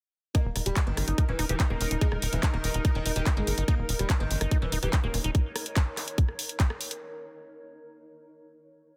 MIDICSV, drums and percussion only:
0, 0, Header, 1, 2, 480
1, 0, Start_track
1, 0, Tempo, 416667
1, 401, Time_signature, 4, 2, 24, 8
1, 10332, End_track
2, 0, Start_track
2, 0, Title_t, "Drums"
2, 400, Note_on_c, 9, 36, 121
2, 401, Note_on_c, 9, 42, 67
2, 516, Note_off_c, 9, 36, 0
2, 516, Note_off_c, 9, 42, 0
2, 641, Note_on_c, 9, 37, 38
2, 641, Note_on_c, 9, 46, 106
2, 756, Note_off_c, 9, 37, 0
2, 756, Note_off_c, 9, 46, 0
2, 761, Note_on_c, 9, 42, 68
2, 876, Note_off_c, 9, 42, 0
2, 880, Note_on_c, 9, 36, 118
2, 881, Note_on_c, 9, 39, 127
2, 881, Note_on_c, 9, 42, 71
2, 996, Note_off_c, 9, 36, 0
2, 996, Note_off_c, 9, 39, 0
2, 996, Note_off_c, 9, 42, 0
2, 1121, Note_on_c, 9, 37, 74
2, 1121, Note_on_c, 9, 46, 93
2, 1236, Note_off_c, 9, 37, 0
2, 1236, Note_off_c, 9, 46, 0
2, 1240, Note_on_c, 9, 42, 69
2, 1356, Note_off_c, 9, 42, 0
2, 1361, Note_on_c, 9, 36, 121
2, 1361, Note_on_c, 9, 42, 69
2, 1476, Note_off_c, 9, 36, 0
2, 1476, Note_off_c, 9, 42, 0
2, 1601, Note_on_c, 9, 37, 37
2, 1601, Note_on_c, 9, 46, 104
2, 1716, Note_off_c, 9, 37, 0
2, 1716, Note_off_c, 9, 46, 0
2, 1721, Note_on_c, 9, 42, 68
2, 1836, Note_off_c, 9, 42, 0
2, 1840, Note_on_c, 9, 36, 115
2, 1841, Note_on_c, 9, 39, 118
2, 1841, Note_on_c, 9, 42, 68
2, 1956, Note_off_c, 9, 36, 0
2, 1956, Note_off_c, 9, 39, 0
2, 1956, Note_off_c, 9, 42, 0
2, 1961, Note_on_c, 9, 37, 37
2, 2076, Note_off_c, 9, 37, 0
2, 2081, Note_on_c, 9, 46, 93
2, 2196, Note_off_c, 9, 46, 0
2, 2201, Note_on_c, 9, 42, 69
2, 2316, Note_off_c, 9, 42, 0
2, 2320, Note_on_c, 9, 36, 126
2, 2321, Note_on_c, 9, 42, 65
2, 2436, Note_off_c, 9, 36, 0
2, 2436, Note_off_c, 9, 42, 0
2, 2440, Note_on_c, 9, 37, 74
2, 2556, Note_off_c, 9, 37, 0
2, 2560, Note_on_c, 9, 46, 109
2, 2676, Note_off_c, 9, 46, 0
2, 2681, Note_on_c, 9, 42, 65
2, 2796, Note_off_c, 9, 42, 0
2, 2800, Note_on_c, 9, 36, 125
2, 2801, Note_on_c, 9, 39, 126
2, 2801, Note_on_c, 9, 42, 70
2, 2916, Note_off_c, 9, 36, 0
2, 2916, Note_off_c, 9, 39, 0
2, 2916, Note_off_c, 9, 42, 0
2, 2921, Note_on_c, 9, 37, 38
2, 3036, Note_off_c, 9, 37, 0
2, 3040, Note_on_c, 9, 46, 95
2, 3156, Note_off_c, 9, 46, 0
2, 3160, Note_on_c, 9, 42, 67
2, 3276, Note_off_c, 9, 42, 0
2, 3280, Note_on_c, 9, 36, 125
2, 3280, Note_on_c, 9, 37, 37
2, 3280, Note_on_c, 9, 42, 67
2, 3396, Note_off_c, 9, 36, 0
2, 3396, Note_off_c, 9, 37, 0
2, 3396, Note_off_c, 9, 42, 0
2, 3520, Note_on_c, 9, 46, 106
2, 3636, Note_off_c, 9, 46, 0
2, 3641, Note_on_c, 9, 42, 66
2, 3756, Note_off_c, 9, 42, 0
2, 3760, Note_on_c, 9, 36, 121
2, 3760, Note_on_c, 9, 37, 74
2, 3760, Note_on_c, 9, 39, 121
2, 3760, Note_on_c, 9, 42, 66
2, 3875, Note_off_c, 9, 36, 0
2, 3876, Note_off_c, 9, 37, 0
2, 3876, Note_off_c, 9, 39, 0
2, 3876, Note_off_c, 9, 42, 0
2, 4000, Note_on_c, 9, 46, 93
2, 4116, Note_off_c, 9, 46, 0
2, 4120, Note_on_c, 9, 42, 67
2, 4236, Note_off_c, 9, 42, 0
2, 4240, Note_on_c, 9, 36, 126
2, 4240, Note_on_c, 9, 37, 39
2, 4240, Note_on_c, 9, 42, 63
2, 4355, Note_off_c, 9, 36, 0
2, 4355, Note_off_c, 9, 37, 0
2, 4355, Note_off_c, 9, 42, 0
2, 4480, Note_on_c, 9, 46, 114
2, 4596, Note_off_c, 9, 46, 0
2, 4600, Note_on_c, 9, 37, 39
2, 4600, Note_on_c, 9, 42, 64
2, 4715, Note_off_c, 9, 37, 0
2, 4715, Note_off_c, 9, 42, 0
2, 4720, Note_on_c, 9, 36, 127
2, 4720, Note_on_c, 9, 39, 124
2, 4720, Note_on_c, 9, 42, 66
2, 4835, Note_off_c, 9, 36, 0
2, 4836, Note_off_c, 9, 39, 0
2, 4836, Note_off_c, 9, 42, 0
2, 4961, Note_on_c, 9, 46, 98
2, 5076, Note_off_c, 9, 46, 0
2, 5080, Note_on_c, 9, 37, 79
2, 5080, Note_on_c, 9, 42, 65
2, 5196, Note_off_c, 9, 37, 0
2, 5196, Note_off_c, 9, 42, 0
2, 5200, Note_on_c, 9, 36, 124
2, 5200, Note_on_c, 9, 42, 66
2, 5315, Note_off_c, 9, 36, 0
2, 5316, Note_off_c, 9, 42, 0
2, 5440, Note_on_c, 9, 46, 110
2, 5556, Note_off_c, 9, 46, 0
2, 5560, Note_on_c, 9, 37, 39
2, 5560, Note_on_c, 9, 42, 63
2, 5676, Note_off_c, 9, 37, 0
2, 5676, Note_off_c, 9, 42, 0
2, 5680, Note_on_c, 9, 36, 123
2, 5680, Note_on_c, 9, 39, 123
2, 5680, Note_on_c, 9, 42, 65
2, 5795, Note_off_c, 9, 39, 0
2, 5795, Note_off_c, 9, 42, 0
2, 5796, Note_off_c, 9, 36, 0
2, 5920, Note_on_c, 9, 37, 38
2, 5920, Note_on_c, 9, 46, 97
2, 6036, Note_off_c, 9, 37, 0
2, 6036, Note_off_c, 9, 46, 0
2, 6040, Note_on_c, 9, 42, 64
2, 6155, Note_off_c, 9, 42, 0
2, 6160, Note_on_c, 9, 36, 126
2, 6161, Note_on_c, 9, 42, 64
2, 6276, Note_off_c, 9, 36, 0
2, 6276, Note_off_c, 9, 42, 0
2, 6401, Note_on_c, 9, 37, 81
2, 6401, Note_on_c, 9, 46, 108
2, 6516, Note_off_c, 9, 37, 0
2, 6516, Note_off_c, 9, 46, 0
2, 6521, Note_on_c, 9, 42, 65
2, 6636, Note_off_c, 9, 42, 0
2, 6640, Note_on_c, 9, 36, 127
2, 6641, Note_on_c, 9, 39, 123
2, 6641, Note_on_c, 9, 42, 66
2, 6756, Note_off_c, 9, 36, 0
2, 6756, Note_off_c, 9, 39, 0
2, 6756, Note_off_c, 9, 42, 0
2, 6881, Note_on_c, 9, 37, 42
2, 6881, Note_on_c, 9, 39, 37
2, 6881, Note_on_c, 9, 46, 98
2, 6996, Note_off_c, 9, 37, 0
2, 6996, Note_off_c, 9, 39, 0
2, 6996, Note_off_c, 9, 46, 0
2, 7001, Note_on_c, 9, 42, 65
2, 7116, Note_off_c, 9, 42, 0
2, 7120, Note_on_c, 9, 36, 123
2, 7121, Note_on_c, 9, 42, 63
2, 7236, Note_off_c, 9, 36, 0
2, 7236, Note_off_c, 9, 42, 0
2, 7240, Note_on_c, 9, 37, 41
2, 7356, Note_off_c, 9, 37, 0
2, 7360, Note_on_c, 9, 46, 110
2, 7476, Note_off_c, 9, 46, 0
2, 7481, Note_on_c, 9, 42, 62
2, 7596, Note_off_c, 9, 42, 0
2, 7600, Note_on_c, 9, 36, 123
2, 7600, Note_on_c, 9, 39, 120
2, 7600, Note_on_c, 9, 42, 62
2, 7716, Note_off_c, 9, 36, 0
2, 7716, Note_off_c, 9, 39, 0
2, 7716, Note_off_c, 9, 42, 0
2, 7720, Note_on_c, 9, 37, 81
2, 7836, Note_off_c, 9, 37, 0
2, 7840, Note_on_c, 9, 46, 96
2, 7956, Note_off_c, 9, 46, 0
2, 7960, Note_on_c, 9, 42, 64
2, 8076, Note_off_c, 9, 42, 0
2, 10332, End_track
0, 0, End_of_file